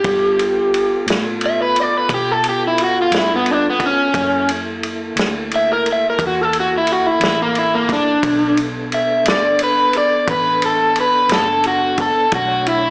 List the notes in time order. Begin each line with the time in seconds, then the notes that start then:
Already playing: G4
0.03 G2 B3 F4 A4, kick, ride
0.39 ride
0.74 ride
1.06 A2, snare, ride
1.41 ride
1.46 E5
1.62 B4
1.76 ride
1.81 D5
1.97 B4
2.09 B2, kick, ride
2.14 G4
2.32 A4
2.44 ride
2.49 G4
2.67 E4
2.78 ride
2.84 F#4
3.02 F4
3.11 G2, snare, ride
3.18 E4
3.36 B3
3.46 ride
3.53 D4
3.70 B3
3.80 kick, ride
3.86 C#4
4.13 F#2 A#3 E4 A4, kick, ride
4.49 ride
4.83 ride
5.16 D2, snare, ride
5.51 ride
5.56 E5
5.73 A#4
5.86 ride
5.92 E5
6.10 A#4
6.19 E2, kick, ride
6.27 F#4
6.43 A4
6.53 ride
6.60 F#4
6.78 E4
6.87 ride
6.92 F#4
7.07 E4
7.20 A1, snare, ride
7.24 E4
7.42 A#3
7.55 E4, ride
7.75 A#3
7.89 D4, kick, snare, ride
8.23 B1 B3 D4 A4, kick, ride
8.57 ride
8.92 E5, ride
9.24 G1, snare, ride
9.29 D5
9.59 ride
9.63 B4
9.93 ride
9.98 D5
10.28 A1 B4, kick, ride
10.62 A4, ride
10.96 ride
11.00 B4
11.29 F#1, snare, ride
11.33 A4
11.64 F#4, ride
11.98 A4, kick, ride
12.32 B1 A3 D4 F#4 C#5, kick, ride
12.66 E4, ride